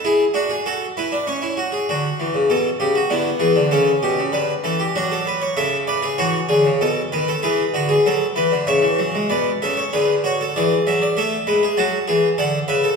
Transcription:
<<
  \new Staff \with { instrumentName = "Harpsichord" } { \time 3/4 \key a \mixolydian \tempo 4 = 97 << { gis'8 fis'16 gis'16 a'8 b'8 cis''4 | fis'4 a'8 g'16 fis'16 e'8 gis'8 | a'8 g'8 b'8 a'16 g'16 fis'16 a'16 b'16 cis''16 | e''8 d''8 cis''2 |
b'2 e''4 | d''8 e''16 cis''16 b'8 cis''8 d''8 e''16 d''16 | e''4 a''4 fis''8 e''8 | } \\ { e'8 d'8 fis'8 e'16 d'16 cis'16 e'16 fis'16 gis'16 | r2 b4 | cis'2 d'4 | a'8 b'16 gis'16 fis'8 gis'8 a'8 b'16 a'16 |
gis'8 fis'16 gis'16 a'8 b'8 cis''4 | b'8 a'8 gis'8 fis'16 a'16 gis'4 | a'8 b'16 gis'16 fis'8 gis'8 a'8 b'16 a'16 | } >> }
  \new Staff \with { instrumentName = "Harpsichord" } { \clef bass \time 3/4 \key a \mixolydian r2. | d8 e16 cis16 b,8 cis8 d8 e16 d16 | cis8 b,16 cis16 d8 e8 fis4 | cis4 e8 d16 cis16 b,8 dis8 |
e8 d8 fis8 e16 d16 cis16 e16 fis16 gis16 | b,8 cis8 d4 e8 fis8 | a8 gis8 fis8 e8 d8 cis8 | }
>>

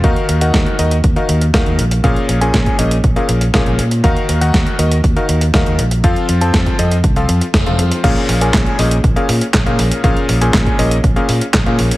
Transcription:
<<
  \new Staff \with { instrumentName = "Electric grand piano" } { \time 4/4 \key bes \minor \tempo 4 = 120 <ees ees' ges' bes' f''>8. <ees ees' ges' bes' ges''>8. <ees ees' ges' bes' ees''>16 r8 <ees ees' ges' bes' f''>8 r16 <ees ees' ges' bes' f''>8 r8 | <bes, des' aes' bes' f''>8. <bes, des' aes' bes' aes''>8. <bes, des' aes' bes' ees''>16 r8 <bes, des' aes' bes' f''>8 r16 <bes, des' aes' bes' f''>8 r8 | <ees ees' ges' bes' f''>8. <ees ees' ges' bes' ges''>8. <ees ees' ges' bes' ees''>16 r8 <ees ees' ges' bes' f''>8 r16 <ees ees' ges' bes' f''>8 r8 | <f c' f' a' f''>8. <f c' f' a' a''>8. <f c' f' a' ees''>16 r8 <f c' f' a' f''>8 r8 <f c' f' a' f''>8. |
<bes, des' aes' bes' f''>8. <bes, des' aes' bes' aes''>8. <bes, des' aes' bes' ees''>16 r8 <bes, des' aes' bes' f''>8 r8 <bes, des' aes' bes' f''>8. | <bes, des' aes' bes' f''>8. <bes, des' aes' bes' aes''>8. <bes, des' aes' bes' ees''>16 r8 <bes, des' aes' bes' f''>8 r8 <bes, des' aes' bes' f''>8. | }
  \new Staff \with { instrumentName = "Fingered electric bass" } { \clef bass \time 4/4 \key bes \minor ees,16 r16 ees,8 ees,16 r16 ees,8 ees,16 r16 ees,8 ees,16 ees,16 bes,,8 | r8 bes,,8 bes,,16 r16 bes,,8 bes,,16 r16 bes,,8 bes,,16 bes,,16 bes,8 | ees,16 r16 ees,8 ees,16 r16 ees,8 ees,16 r16 ees,8 ees,16 ees,16 bes,,8 | f,16 r16 f,8 f,16 r16 f,8 c,8 f,16 r16 f,,16 f,,16 f,16 r16 |
bes,,16 r16 bes,,8 bes,,16 r16 bes,,8 bes,,16 r16 bes,16 r16 bes,,16 bes,16 bes,,16 r16 | bes,,16 r16 bes,,8 bes,,16 r16 bes,,8 bes,,16 r16 bes,16 r16 bes,,16 bes,16 bes,,16 r16 | }
  \new DrumStaff \with { instrumentName = "Drums" } \drummode { \time 4/4 <hh bd>16 hh16 hh16 hh16 <hh bd sn>16 hh16 hh16 hh16 <hh bd>16 hh16 hh16 hh16 <hh bd sn>16 hh16 hh16 hh16 | <hh bd>16 hh16 hh16 hh16 <hh bd sn>16 <hh bd>16 hh16 hh16 <hh bd>16 hh16 hh16 hh16 <hh bd sn>16 hh16 hh16 hh16 | <hh bd>16 hh16 hh16 hh16 <hh bd sn>16 hh16 hh16 hh16 <hh bd>16 hh16 hh16 hh16 <hh bd sn>16 hh16 hh16 hh16 | <hh bd>16 hh16 hh16 hh16 <hh bd sn>16 <hh bd>16 hh16 hh16 <hh bd>16 hh16 hh16 hh16 <hh bd sn>16 hh16 hh16 hh16 |
<cymc hh bd>16 hh16 hho16 hh16 <hc hh bd sn>16 hh16 hho16 hh16 <hh bd>16 hh16 hho16 hh16 <hc hh bd sn>16 hh16 hho16 hh16 | <hh bd>16 hh16 hho16 hh16 <hc hho bd sn>16 <hh bd>16 hho16 hh16 <hh bd>16 hh16 hho16 hh16 <hc hh bd sn>16 hh16 hho16 hh16 | }
>>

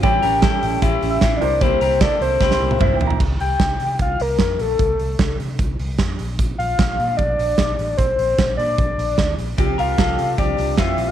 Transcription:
<<
  \new Staff \with { instrumentName = "Soft synth lead" } { \time 4/4 \key c \mixolydian \tempo 4 = 150 g''2 \tuplet 3/2 { e''4 e''8~ e''8 d''4 } | c''4 d''8 c''2 r8 | r8 g''4. f''8 bes'4 a'8~ | a'4. r2 r8 |
r8 f''4. d''2 | c''4. d''2 r8 | r8 f''4. d''4 e''8. f''16 | }
  \new Staff \with { instrumentName = "Upright piano" } { \time 4/4 \key c \mixolydian << { r1 | r2. \tuplet 3/2 { e''8 g''8 bes''8 } | r1 | r1 |
r1 | r1 | r1 | } \\ { <g' a' cis''>2.~ <g' a' cis''>8 <e' bes' c''>8~ | <e' bes' c''>1 | r1 | r1 |
r1 | r1 | r1 | } >> }
  \new Staff \with { instrumentName = "Clean electric guitar" } { \time 4/4 \key c \mixolydian <e' g'>8 <g' bes'>8 <e' a'>4 <e' g'>4 <c' e'>4 | <e' g'>8 <g' bes'>8 <e' a'>4 <e' g'>4 <c' e'>4 | r1 | r1 |
r1 | r1 | <c' g'>8 <g' bes'>8 <f' a'>4 <c' g'>4 <c' f'>4 | }
  \new Staff \with { instrumentName = "Steel-string acoustic guitar" } { \time 4/4 \key c \mixolydian <a, e g cis' e'>8 <g cis' e'>8 <a, e g cis' e'>8 <g cis' e'>8 <e g cis' e'>8 <g cis' e'>8 <a, e g cis' e'>8 <g bes e'>8 | <c g bes e'>8 <g bes e'>8 <c g bes e'>8 <g bes e'>8 <c g bes e'>8 <g bes e'>8 <c g bes e'>8 <g bes e'>8 | r1 | r1 |
r1 | r1 | <c f c' f' g'>8 <f' g'>8 <c f c' f' g'>8 <c' f' g'>8 <f c' f' g'>8 <c' f' g'>8 <c f c' f' g'>8 <c' f' g'>8 | }
  \new Staff \with { instrumentName = "Fingered electric bass" } { \clef bass \time 4/4 \key c \mixolydian a,,8 a,,8. r16 a,,8 a,,8 a,,8 a,,8 c,8~ | c,8 c,8. r16 c,8 c,8 c,8 c,8 bes,,8 | c,8 c,8 c,8 c8 c,8 c,8 f,8 bes,,8 | c,8 c,8 c,8 c8 c,8 c,8 f,8 bes,,8~ |
bes,,8 bes,,8 bes,,8 bes,8 bes,,8 bes,,8 bes,,8 a,,8 | bes,,8 bes,,8 bes,,8 bes,8 bes,,8 bes,,8 d,8 bes,,8 | c,8 c,8 c,8 c8 c,8 c,8 f,8 bes,,8 | }
  \new DrumStaff \with { instrumentName = "Drums" } \drummode { \time 4/4 <hh bd>8 hho8 <hh bd sn>8 hho8 <hh bd>8 hho8 <hh bd sn>8 hho8 | <hh bd>8 hho8 <hh bd sn>8 hho8 <bd sn>16 sn8 tommh16 <bd toml>8 tomfh16 tomfh16 | <cymc bd>8 hho8 <hh bd sn>8 hho8 <hh bd>8 hho8 <hh bd sn>8 hho8 | <hh bd>8 hho8 <hh bd sn>8 hho8 <hh bd>8 hho8 <hh bd sn>8 hho8 |
<hh bd>8 hho8 <hh bd sn>8 hho8 <hh bd>8 hho8 <hh bd sn>8 hho8 | <hh bd>8 hho8 <hh bd sn>8 hho8 <hh bd>8 hho8 <hh bd sn>8 hho8 | <hh bd>8 hho8 <hh bd sn>8 hho8 <hh bd>8 hho8 <hh bd sn>8 hho8 | }
>>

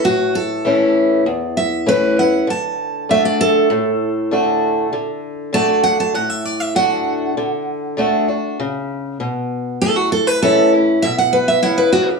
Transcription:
<<
  \new Staff \with { instrumentName = "Steel-string acoustic guitar" } { \time 4/4 \key d \major \tempo 4 = 98 << { fis'8 a'4 r4 e''8 b'8 fis''8 | a''4 e''16 d''16 a'2~ a'8~ | a'8 r8 a''8 fis''16 a''16 fis''16 e''16 d''16 e''16 fis''4~ | fis''4 r2. |
a'16 fis'16 a'16 b'16 a'8 r8 e''16 fis''16 b'16 e''16 fis''16 b'16 d''8 | } \\ { r1 | r1 | r1 | r1 |
r2. e'8 fis'16 g'16 | } >> }
  \new Staff \with { instrumentName = "Steel-string acoustic guitar" } { \time 4/4 \key d \major << { r4 <e a cis' e'>4 r4 <e a cis' e'>8 <cis' e'>8 | r4 <d a d' fis'>4 r4 <d a d' fis'>4 | r4 <d a d' fis'>4 r4 <d a d' fis'>4 | r4 <d a d' fis'>8 <d' fis'>8 r2 |
r4 <e a cis' e'>8 <cis' e'>8 r2 | } \\ { a,2 e,2 | d2 a,2 | d2 a,2 | d2 cis4 b,4 |
a,2 b,4 cis4 | } >> }
>>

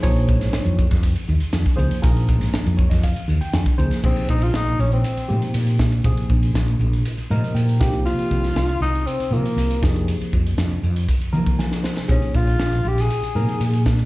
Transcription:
<<
  \new Staff \with { instrumentName = "Tenor saxophone" } { \time 4/4 \key bes \dorian \tempo 4 = 119 r1 | r1 | c'8 ees'16 f'16 ees'8 des'16 c'4. r8. | r1 |
f'4. ees'8 c'8 bes4 r8 | r1 | des'8 f'4 g'16 aes'4.~ aes'16 r8 | }
  \new Staff \with { instrumentName = "Tine electric piano" } { \time 4/4 \key bes \dorian r1 | r4. des''16 ees''16 f''8. g''16 aes''4 | r1 | r2 r8 ees''8 g''4 |
r1 | r2. aes''8 c''8 | r1 | }
  \new Staff \with { instrumentName = "Tine electric piano" } { \time 4/4 \key bes \dorian <f bes ees' aes' des''>4. r2 <f bes ees' aes' c''>8 | <f bes ees' aes' bes'>4. r2 <f bes ees' aes' c''>8 | <c f bes ees' aes'>4. r4 <c f bes ees' g'>4 r8 | <c f bes ees' aes'>4. r4 <c f bes ees' bes'>4 <c f bes ees' g'>8~ |
<c f bes ees' g'>4 r4. <c f bes ees' f'>4 <c f bes ees' aes'>8~ | <c f bes ees' aes'>4 r4. <c f bes ees' bes'>4 r8 | <c f bes ees' aes'>4. r4 <c f bes ees' bes'>4 r8 | }
  \new Staff \with { instrumentName = "Fretless electric bass" } { \clef bass \time 4/4 \key bes \dorian bes,,8. aes,,8 f,8 f,8 r16 ees,16 r16 f,16 r16 des,16 r16 | bes,,8. aes,,8 f,8 f,8 r16 ees,16 r16 f,16 r16 des,16 r16 | bes,,16 r16 bes,,8 bes,,8 bes,,8 r8 bes,16 r16 bes,4 | bes,,16 r16 bes,,8 bes,,8 bes,,8 r8 bes,16 r16 bes,8 c,8~ |
c,16 r16 c,8 c,8 c,8 r8 c16 r16 c,8 f,8~ | f,16 r16 f,8 f,8 f,8 r8 f16 r16 f4 | bes,,16 r16 bes,,8 bes,,8 bes,,8 r8 bes,16 r16 bes,4 | }
  \new DrumStaff \with { instrumentName = "Drums" } \drummode { \time 4/4 <hhp bd cymr>16 cymr16 <hhp bd>16 <cymr sn>16 <hhp cymr sn>16 cymr16 <hhp bd>16 <bd cymr sn>16 <hhp bd cymr>16 cymr16 hhp16 cymr16 <hhp cymr sn>16 <bd cymr sn>16 hhp16 cymr16 | <hhp bd cymr>16 cymr16 <hhp bd>16 <cymr sn>16 <hhp cymr sn>16 cymr16 <hhp bd>16 <bd cymr sn>16 <hhp bd cymr>16 cymr16 hhp16 cymr16 <hhp cymr sn>16 <bd cymr sn>16 hhp16 <cymr sn>16 | <cymc bd>16 cymr16 <hhp bd>16 cymr16 <hhp cymr sn>16 cymr16 hhp16 cymr16 <hhp cymr>16 cymr16 hhp16 cymr16 <hhp cymr>16 cymr16 <hhp bd sn>16 cymr16 | <hhp bd cymr>16 cymr16 <hhp bd>16 cymr16 <hhp cymr sn>16 cymr16 hhp16 cymr16 <hhp cymr>16 cymr16 hhp16 cymr16 <hhp cymr>16 cymr16 <hhp bd sn>16 cymr16 |
<hhp cymr>16 cymr16 <hhp bd>16 <cymr sn>16 <hhp cymr sn>16 cymr16 <hhp sn>16 cymr16 <hhp cymr>16 cymr16 hhp16 cymr16 <hhp cymr>16 cymr16 <hhp bd sn>16 cymr16 | <hhp cymr>16 cymr16 <hhp bd>16 cymr16 <hhp cymr sn>16 cymr16 hhp16 cymr16 <hhp bd cymr>16 cymr16 hhp16 <bd cymr>16 <hhp sn>16 sn16 <hhp sn>16 sn16 | <hhp bd cymr>16 cymr16 <hhp bd>16 cymr16 <hhp cymr sn>16 cymr16 hhp16 <cymr sn>16 <hhp cymr>16 cymr16 hhp16 cymr16 <hhp cymr>16 cymr16 <hhp bd sn>16 cymr16 | }
>>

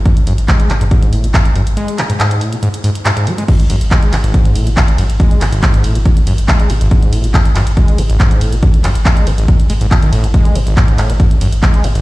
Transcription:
<<
  \new Staff \with { instrumentName = "Acid bass" } { \clef bass \time 4/4 \key a \lydian \tempo 4 = 140 gis,16 r16 fis,16 r16 gis8 gis,16 gis,16 gis,8 a,16 b,16 gis,16 r16 fis,16 r16 | gis8 gis,16 gis,16 gis,8 a,16 b,16 gis,16 r16 gis,16 r16 gis,16 gis,16 gis16 gis16 | gis,16 r16 fis,16 r16 gis8 gis,16 gis,,16 gis,8 a,16 b,16 gis,16 r16 fis,16 r16 | gis8 gis,16 gis,,16 gis,8 a,16 b,16 gis,16 r16 fis,16 r16 gis8 gis,16 gis,,16 |
gis,8 a,16 b,16 gis,16 r16 fis,16 r16 gis8 gis,16 gis,,16 gis,8 a,16 b,16 | gis,16 r16 fis,16 r16 gis8 gis,16 gis,,16 gis,16 r16 gis16 gis,16 b,16 dis16 a,16 gis,16 | gis8 gis,16 gis,,16 gis,8 a,16 b,16 gis,16 r16 fis,16 r16 gis8 gis,16 gis,,16 | }
  \new Staff \with { instrumentName = "Sub bass" } { \clef bass \time 4/4 \key a \lydian r16 gis,,16 gis,,16 gis,,16 r16 gis,,16 gis,,16 gis,,16 r16 gis,,16 gis,,16 gis,,16 r16 gis,,16 gis,,16 gis,,16 | r1 | r16 gis,,16 gis,,16 gis,,16 r16 gis,,16 gis,,16 gis,,16 r16 gis,,16 gis,,16 gis,,16 r16 gis,,16 gis,,16 gis,,16 | r16 gis,,16 gis,,16 gis,,16 r16 gis,,16 gis,,16 gis,,16 r16 gis,,16 gis,,16 gis,,16 r16 gis,,16 gis,,16 gis,,16 |
r16 gis,,16 gis,,16 gis,,16 r16 gis,,16 gis,,16 gis,,16 r16 gis,,16 gis,,16 gis,,16 r16 gis,,16 gis,,16 gis,,16 | r16 gis,,16 gis,,16 gis,,16 r16 gis,,16 gis,,16 gis,,16 r16 gis,,16 gis,,16 gis,,16 r16 gis,,16 gis,,16 gis,,16 | r16 gis,,16 gis,,16 gis,,16 r16 gis,,16 gis,,16 gis,,16 r16 gis,,16 gis,,16 gis,,16 r16 gis,,16 gis,,16 gis,,16 | }
  \new DrumStaff \with { instrumentName = "Drums" } \drummode { \time 4/4 <hh bd>16 hh16 hho16 hh16 <hc hh bd>16 hh16 <hc hho>16 hh16 <hh bd>16 hh16 hho16 hh16 <hc hh bd>16 hh16 hho16 hh16 | hh16 hh16 <hc hho>16 hh16 <hc hh>16 hh16 hho16 hh16 hh16 hh16 hho16 hh16 <hc hh>16 hh16 hho16 hh16 | <cymc hh bd>16 hh16 <hho cymr>16 hh16 <hc hh bd>16 hh16 <hc hho cymr>16 hh16 <hh bd>16 hh16 <hho cymr>16 hh16 <hc hh bd>16 hh16 <hho cymr>16 hh16 | <hh bd>16 hh16 <hc hho cymr>16 hh16 <hc hh bd>16 hh16 <hho cymr>16 hh16 <hh bd>16 hh16 <hho cymr>16 hh16 <hc hh bd>16 hh16 <hho cymr>16 hh16 |
<hh bd>16 hh16 <hho cymr>16 hh16 <hc hh bd>16 hh16 <hc hho cymr>16 hh16 <hh bd>16 hh16 <hho cymr>16 hh16 <hc hh bd>16 hh16 <hho cymr>16 hh16 | <hh bd>16 hh16 <hc hho cymr>16 hh16 <hc hh bd>16 hh16 <hho cymr>16 hh16 <hh bd>16 hh16 <hho cymr>16 hh16 <hc hh bd>16 hh16 <hho cymr>16 hh16 | <hh bd>16 hh16 <hho cymr>16 hh16 <hc hh bd>16 hh16 <hc hho cymr>16 hh16 <hh bd>16 hh16 <hho cymr>16 hh16 <hc hh bd>16 hh16 <hho cymr>16 hh16 | }
>>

